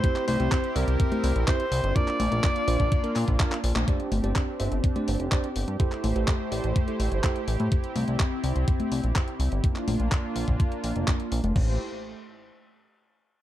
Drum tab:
CC |----------------|----------------|----------------|----------------|
HH |xxoxxxoxxxoxxxox|xxoxxxoxxxoxxxo-|xxoxx-oxxxoxxxox|xxoxx-oxxxoxxxox|
CP |-x--x-------x---|-x--x-----x-xx-x|----x-------x---|-x--x-------x---|
CG |--o------o------|--o------------o|--o------o------|--o------------o|
BD |o---o---o---o---|o---o--oo--oo---|o---o---o---o---|o---o---o---o---|

CC |----------------|----------------|x---------------|
HH |xxoxx-oxxxoxxxox|xxoxx-oxxxoxxxox|----------------|
CP |----x-------x---|-x--x-------x---|----------------|
CG |--o------o------|--o------------o|----------------|
BD |o---o---o---o---|o---o--oo---o---|o---------------|